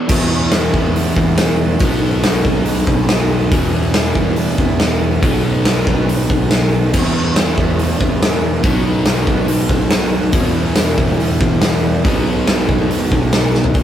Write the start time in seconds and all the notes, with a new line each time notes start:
0.06 E2 B2 E3 G3 B3 E4, kick, crash
0.11 E3
0.31 G3 B3 E4
0.51 snare, open hi-hat
0.72 E2 G3 B3 E4, kick
0.94 E3 G3 B3 E4, open hi-hat
1.16 E2 G3 B3 E4, kick
1.36 E3 G3 B3 E4, snare, open hi-hat
1.57 G3 B3 E4
1.78 B1 B2 D#3 F#3 B3 D#4, kick, open hi-hat
2.00 F#3 B3 D#4
2.23 snare, open hi-hat
2.43 B1 F#3 B3 D#4, kick
2.64 B2 D#3 F#3 B3 D#4, open hi-hat
2.87 B1 F#3 B3 D#4, kick
3.08 D#3 F#3 B3 D#4, snare, open hi-hat
3.30 F#3 B3 D#4
3.51 E2 B2 E3 G3 B3 E4, kick, open hi-hat
3.73 G3 B3 E4
3.94 snare, open hi-hat
4.14 E2 G3 B3 E4, kick
4.35 E3 G3 B3 E4, open hi-hat
4.57 E2 G3 B3 E4, kick
4.79 E3 G3 B3 E4, snare, open hi-hat
5.00 G3 B3 E4
5.22 B1 B2 D#3 F#3 B3 D#4, kick, open hi-hat
5.43 F#3 B3 D#4
5.65 snare, open hi-hat
5.86 B1 F#3 B3 D#4, kick
6.06 B2 D#3 F#3 B3 D#4, open hi-hat
6.29 B1 F#3 B3 D#4, kick
6.49 D#3 F#3 B3 D#4, snare, open hi-hat
6.71 F#3 B3 D#4
6.93 E2 B2 E3 G3 B3 E4, kick, crash
6.97 E3
7.14 G3 B3 E4
7.36 snare, open hi-hat
7.56 E2 G3 B3 E4, kick
7.78 E3 G3 B3 E4, open hi-hat
7.98 E2 G3 B3 E4, kick
8.20 E3 G3 B3 E4, snare, open hi-hat
8.41 G3 B3 E4
8.62 B1 B2 D#3 F#3 B3 D#4, kick, open hi-hat
8.84 F#3 B3 D#4
9.05 snare, open hi-hat
9.27 B1 F#3 B3 D#4, kick
9.46 B2 D#3 F#3 B3 D#4, open hi-hat
9.69 B1 F#3 B3 D#4, kick
9.90 D#3 F#3 B3 D#4, snare, open hi-hat
10.12 F#3 B3 D#4
10.32 E2 B2 E3 G3 B3 E4, kick, open hi-hat
10.55 G3 B3 E4
10.75 snare, open hi-hat
10.97 E2 G3 B3 E4, kick
11.18 E3 G3 B3 E4, open hi-hat
11.40 E2 G3 B3 E4, kick
11.61 E3 G3 B3, snare, open hi-hat
11.66 E4
11.83 G3 B3 E4
12.04 B1 B2 D#3 F#3 B3 D#4, kick, open hi-hat
12.27 F#3 B3 D#4
12.47 snare, open hi-hat
12.69 B1 F#3 B3 D#4, kick
12.90 B2 D#3 F#3 B3 D#4, open hi-hat
13.11 B1 F#3 B3 D#4, kick
13.31 D#3 F#3 B3 D#4, snare, open hi-hat
13.54 F#3 B3 D#4, snare
13.64 floor tom
13.74 E2 B2 E3, kick, open hi-hat